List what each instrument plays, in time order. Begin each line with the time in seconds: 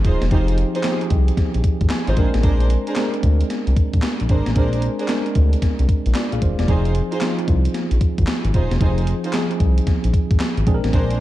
Already playing: tine electric piano F3 C4 D#4 G#4
0.04 analog synth bass D#1, string section D#4 F4 G#4 C5, kick, closed hi-hat
0.22 analog synth bass E1, snare, closed hi-hat
0.31 analog synth bass F1, tine electric piano F3 C4 D#4 G4, string section D#4 F4 G#4 C5, kick, closed hi-hat
0.48 closed hi-hat
0.58 closed hi-hat
0.74 string section D#4 F4 G#4 C5, closed hi-hat
0.83 tine electric piano F3 C4 D#4 G4, snare, clap, closed hi-hat
0.92 tine electric piano G#4
1.01 closed hi-hat
1.10 analog synth bass C2, kick, closed hi-hat
1.28 closed hi-hat
1.37 kick, snare, closed hi-hat
1.54 analog synth bass A#1, closed hi-hat
1.64 kick, closed hi-hat
1.81 analog synth bass G#1, kick, closed hi-hat
1.90 tine electric piano G#5, snare, clap, closed hi-hat
2.07 analog synth bass G#1, string section D#4 F4 G#4 C5, closed hi-hat
2.17 analog synth bass A#1, tine electric piano G#3 C4 D4 A#4, kick, closed hi-hat
2.34 analog synth bass A1, snare, closed hi-hat
2.43 analog synth bass A#1, string section D4 G#4 A#4 C5, kick, closed hi-hat
2.60 closed hi-hat
2.70 closed hi-hat
2.87 string section D4 G#4 A#4 C5, closed hi-hat
2.96 tine electric piano G#3 C4 D4 A#4, snare, clap, closed hi-hat
3.14 closed hi-hat
3.23 analog synth bass D2, kick, closed hi-hat
3.41 closed hi-hat
3.50 snare, closed hi-hat
3.67 analog synth bass C2, closed hi-hat
3.76 kick, closed hi-hat
3.93 analog synth bass A#1, kick, closed hi-hat
4.02 snare, clap, closed hi-hat
4.20 analog synth bass A#1, closed hi-hat
4.29 analog synth bass G#1, string section D4 G#4 A#4 C5, kick, closed hi-hat
4.46 analog synth bass A1, snare, closed hi-hat
4.56 analog synth bass A#1, tine electric piano G#3 C4 D4 A#4, string section D4 G#4 A#4 C5, kick, closed hi-hat
4.73 closed hi-hat
4.82 closed hi-hat
4.99 string section D4 G#4 A#4 C5, closed hi-hat
5.08 tine electric piano G#3 C4 D4 A#4, snare, clap, closed hi-hat
5.26 closed hi-hat
5.35 analog synth bass D2, kick, closed hi-hat
5.53 closed hi-hat
5.62 kick, snare, closed hi-hat
5.79 analog synth bass C2, closed hi-hat
5.89 kick, closed hi-hat
6.06 analog synth bass A#1, closed hi-hat
6.15 tine electric piano F4 D5, snare, clap, closed hi-hat
6.32 analog synth bass A#1, tine electric piano G#4 F5, closed hi-hat
6.42 analog synth bass D#1, tine electric piano C5, kick, closed hi-hat
6.59 analog synth bass E1, tine electric piano F4 D5, snare, closed hi-hat
6.68 analog synth bass F1, tine electric piano F3 C4 D#4 G#4, string section D#4 F4 G#4 C5, kick, closed hi-hat
6.85 closed hi-hat
6.95 closed hi-hat
7.12 string section D#4 F4 G#4 C5, closed hi-hat
7.21 tine electric piano F3 C4 D#4 F4, snare, clap, closed hi-hat
7.39 closed hi-hat
7.48 analog synth bass C2, kick, closed hi-hat
7.65 closed hi-hat
7.74 snare, closed hi-hat
7.91 analog synth bass A#1, closed hi-hat
8.01 kick, closed hi-hat
8.18 analog synth bass G#1, kick, closed hi-hat
8.27 snare, clap, closed hi-hat
8.45 analog synth bass G#1, closed hi-hat
8.54 analog synth bass D#1, string section D#4 F4 G#4 C5, kick, closed hi-hat
8.71 analog synth bass E1, snare, closed hi-hat
8.80 analog synth bass F1, tine electric piano F3 C4 D#4 G#4, string section D#4 F4 G#4 C5, kick, closed hi-hat
8.98 closed hi-hat
9.07 closed hi-hat
9.24 string section D#4 F4 G#4 C5, closed hi-hat
9.33 tine electric piano F3 C4 D#4 G#4, snare, clap, closed hi-hat
9.51 closed hi-hat
9.60 analog synth bass C2, kick, closed hi-hat
9.78 closed hi-hat
9.87 kick, snare, closed hi-hat
10.04 analog synth bass A#1, closed hi-hat
10.14 kick, closed hi-hat
10.31 analog synth bass G#1, kick, closed hi-hat
10.40 snare, clap, closed hi-hat
10.57 analog synth bass G#1, closed hi-hat
10.67 analog synth bass A#1, tine electric piano G#3 C4 D4 G#4, kick, closed hi-hat
10.74 tine electric piano A#4
10.84 analog synth bass A1, snare, closed hi-hat
10.93 analog synth bass A#1, string section D4 G#4 A#4 C5, kick, closed hi-hat
11.11 closed hi-hat